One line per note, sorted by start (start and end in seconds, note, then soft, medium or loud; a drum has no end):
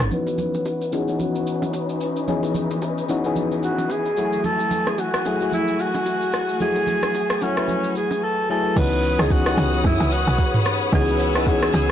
0.00 0.11 G#1 medium
0.00 0.12 E3 medium
0.00 0.14 A3 medium
0.00 0.12 B3 medium
0.00 0.12 C#4 medium
0.00 0.13 D#4 medium
0.00 0.14 A4 medium
0.00 cross-stick loud
0.00 shaker medium
0.11 8.72 E3 medium
0.11 0.78 E3 medium
0.11 0.78 B3 medium
0.11 4.13 C#4 medium
0.11 0.79 C#4 medium
0.11 4.13 D#4 medium
0.11 0.79 D#4 medium
0.11 2.26 F#4 medium
0.11 0.79 F#4 medium
0.11 4.13 B4 medium
0.11 0.90 B4 loud
0.11 low conga medium
0.11 shaker medium
0.27 high bongo medium
0.27 shaker medium
0.38 low conga medium
0.38 shaker medium
0.54 low bongo medium
0.54 shaker soft
0.65 high bongo medium
0.65 shaker medium
0.81 shaker medium
0.92 1.05 E3 medium
0.92 1.05 B3 medium
0.92 1.06 C#4 medium
0.92 1.06 D#4 medium
0.92 1.06 F#4 medium
0.92 1.23 G#4 medium
0.92 low bongo medium
0.92 shaker medium
1.08 1.94 E3 medium
1.08 1.94 B3 medium
1.08 1.94 C#4 medium
1.08 1.95 D#4 medium
1.08 1.95 F#4 medium
1.08 shaker medium
1.19 2.01 F#4 medium
1.19 low conga medium
1.19 shaker medium
1.35 shaker medium
1.47 shaker medium
1.62 low bongo medium
1.62 shaker soft
1.73 high bongo medium
1.73 shaker medium
1.89 shaker soft
2.01 shaker medium
2.16 shaker soft
2.28 2.94 E3 medium
2.28 2.95 B3 medium
2.28 2.95 C#4 medium
2.28 2.95 D#4 medium
2.28 2.95 G#4 loud
2.28 8.72 G#5 medium
2.28 low conga medium
2.28 shaker medium
2.43 high bongo soft
2.43 shaker medium
2.54 low conga medium
2.54 shaker medium
2.71 low bongo medium
2.71 shaker medium
2.82 high bongo medium
2.82 shaker medium
2.98 shaker medium
3.09 3.21 E3 medium
3.09 3.22 B3 medium
3.09 3.22 C#4 medium
3.09 3.22 D#4 medium
3.09 3.22 F#4 medium
3.09 low bongo medium
3.09 shaker medium
3.24 3.99 E3 medium
3.24 4.00 B3 medium
3.24 4.00 C#4 medium
3.24 4.00 D#4 medium
3.24 4.00 G#4 medium
3.24 shaker medium
3.36 low conga medium
3.36 shaker medium
3.52 shaker medium
3.63 3.93 F#4 medium
3.63 shaker medium
3.78 low bongo medium
3.78 shaker soft
3.90 4.47 G#4 loud
3.90 high bongo medium
3.90 shaker medium
4.06 shaker soft
4.17 5.04 F#3 medium
4.17 8.73 A3 medium
4.17 5.05 A3 medium
4.17 5.05 E4 medium
4.17 8.73 F#4 medium
4.17 4.25 F#4 medium
4.17 shaker medium
4.25 5.08 G#5 medium
4.33 shaker medium
4.44 4.90 A4 loud
4.44 low conga medium
4.44 shaker medium
4.59 high bongo medium
4.59 shaker medium
4.71 low conga medium
4.71 shaker medium
4.87 5.01 G#4 loud
4.87 cross-stick medium
4.87 low bongo medium
4.87 shaker soft
4.98 5.53 F#4 loud
4.98 high bongo medium
4.98 shaker medium
5.14 cross-stick loud
5.14 shaker soft
5.25 5.38 F#3 medium
5.25 5.38 A3 medium
5.25 5.38 E4 medium
5.25 5.38 G#4 medium
5.25 low bongo medium
5.25 shaker medium
5.41 6.26 F#3 medium
5.41 6.27 A3 medium
5.41 6.27 E4 medium
5.41 6.27 G#4 medium
5.41 shaker medium
5.52 5.82 E4 loud
5.52 low conga medium
5.52 shaker medium
5.68 shaker medium
5.79 6.61 F#4 loud
5.79 shaker medium
5.94 low bongo medium
5.94 shaker soft
6.06 high bongo medium
6.06 shaker medium
6.22 shaker soft
6.33 cross-stick medium
6.33 shaker medium
6.49 shaker medium
6.60 7.27 F#3 medium
6.60 7.27 A3 medium
6.60 7.27 E4 medium
6.60 7.28 F#4 medium
6.60 7.44 G#4 loud
6.60 low conga medium
6.60 shaker medium
6.76 high bongo medium
6.76 shaker medium
6.87 low conga medium
6.87 shaker medium
7.03 cross-stick medium
7.03 low bongo medium
7.03 shaker soft
7.14 high bongo medium
7.14 shaker medium
7.30 cross-stick loud
7.30 shaker medium
7.41 7.54 F#3 medium
7.41 7.54 A3 medium
7.41 7.96 C#4 medium
7.41 7.55 E4 medium
7.41 7.55 F#4 medium
7.41 low bongo medium
7.41 shaker medium
7.57 8.32 F#3 medium
7.57 8.32 A3 medium
7.57 8.32 E4 medium
7.57 8.33 B4 medium
7.57 cross-stick medium
7.57 shaker medium
7.68 low conga medium
7.68 shaker medium
7.84 shaker medium
7.95 8.25 G#4 medium
7.95 shaker medium
8.11 low bongo medium
8.11 shaker soft
8.24 8.50 A4 loud
8.50 8.72 F#3 medium
8.50 8.72 A3 medium
8.50 8.72 E4 medium
8.50 8.73 G#4 medium
8.50 8.79 A4 loud
8.76 9.17 C#2 loud
8.76 9.10 E3 medium
8.76 9.10 B3 medium
8.76 9.10 C#4 medium
8.76 9.10 D#4 medium
8.76 9.11 F#4 medium
8.76 11.92 B4 medium
8.76 9.22 B4 loud
8.76 11.92 C#5 medium
8.76 11.92 F#5 medium
8.76 10.90 D#6 medium
8.76 kick loud
8.76 crash loud
8.76 shaker medium
8.92 shaker medium
9.03 open hi-hat medium
9.03 shaker medium
9.19 9.56 C#2 loud
9.19 9.40 E3 medium
9.19 9.40 B3 medium
9.19 9.40 C#4 medium
9.19 9.41 D#4 medium
9.19 9.33 G#4 loud
9.19 9.41 G#4 medium
9.19 cross-stick loud
9.19 shaker medium
9.30 9.85 F#4 loud
9.30 kick loud
9.30 shaker medium
9.46 10.32 E3 medium
9.46 10.32 B3 medium
9.46 10.32 C#4 medium
9.46 10.32 D#4 medium
9.46 9.52 G4 medium
9.46 cross-stick loud
9.46 shaker medium
9.54 9.83 C#2 loud
9.54 10.36 G#4 medium
9.54 open hi-hat medium
9.54 shaker loud
9.73 shaker medium
9.84 9.99 F#2 loud
9.84 10.14 E4 loud
9.84 kick loud
9.84 shaker medium
10.00 10.26 C#2 medium
10.00 shaker medium
10.12 10.66 F#4 medium
10.12 open hi-hat medium
10.12 shaker medium
10.27 10.38 B1 medium
10.27 shaker medium
10.38 kick medium
10.38 shaker medium
10.54 mid tom loud
10.54 shaker medium
10.65 cross-stick medium
10.65 open hi-hat medium
10.65 shaker loud
10.81 shaker medium
10.92 11.70 C#2 loud
10.92 11.26 E3 medium
10.92 11.26 B3 medium
10.92 11.26 C#4 medium
10.92 11.27 D#4 medium
10.92 11.27 F#4 medium
10.92 11.38 G#4 loud
10.92 11.92 E6 loud
10.92 kick loud
10.92 shaker medium
11.08 shaker medium
11.19 open hi-hat medium
11.19 shaker medium
11.35 11.44 E3 medium
11.35 11.45 B3 medium
11.35 11.45 C#4 medium
11.35 11.45 D#4 medium
11.35 11.45 G#4 medium
11.35 11.50 B4 medium
11.35 cross-stick loud
11.35 shaker medium
11.47 11.92 E3 medium
11.47 11.92 B3 medium
11.47 11.92 C#4 medium
11.47 11.92 D#4 medium
11.47 11.92 F#4 medium
11.47 11.74 G#4 loud
11.47 kick loud
11.47 shaker medium
11.63 cross-stick loud
11.63 shaker medium
11.74 11.92 C#2 loud
11.74 11.92 G#4 loud
11.74 open hi-hat medium
11.74 shaker loud